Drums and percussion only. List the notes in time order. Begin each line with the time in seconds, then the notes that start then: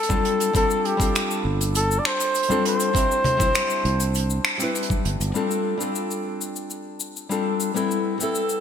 0.03 closed hi-hat
0.10 kick, high conga, cabasa
0.25 closed hi-hat
0.40 closed hi-hat, cabasa
0.55 kick, closed hi-hat, cabasa
0.70 cabasa
0.85 closed hi-hat
1.00 kick, closed hi-hat, cabasa
1.15 finger snap, closed hi-hat, cabasa
1.31 cabasa
1.61 closed hi-hat, cabasa
1.75 closed hi-hat, cabasa
1.91 cabasa
2.05 finger snap, closed hi-hat
2.20 closed hi-hat, cabasa
2.35 closed hi-hat, cabasa
2.43 closed hi-hat
2.50 high conga, cabasa
2.65 closed hi-hat
2.80 closed hi-hat, cabasa
2.95 kick, closed hi-hat, cabasa
3.11 cabasa
3.24 closed hi-hat, low conga
3.40 kick, closed hi-hat, high conga, cabasa
3.55 finger snap, closed hi-hat, cabasa
3.70 cabasa
3.85 closed hi-hat
4.00 closed hi-hat, cabasa
4.15 closed hi-hat, cabasa
4.30 cabasa
4.45 finger snap, closed hi-hat
4.60 closed hi-hat, cabasa
4.75 closed hi-hat, cabasa
4.82 closed hi-hat
4.90 kick, high conga, cabasa
5.05 closed hi-hat
5.21 closed hi-hat, cabasa
5.35 cabasa
5.51 cabasa
5.81 cabasa
5.95 cabasa
6.11 cabasa
6.41 cabasa
6.56 cabasa
6.70 cabasa
7.00 cabasa
7.16 cabasa
7.31 cabasa
7.60 cabasa
7.76 cabasa
7.91 cabasa
8.21 cabasa
8.35 cabasa
8.49 cabasa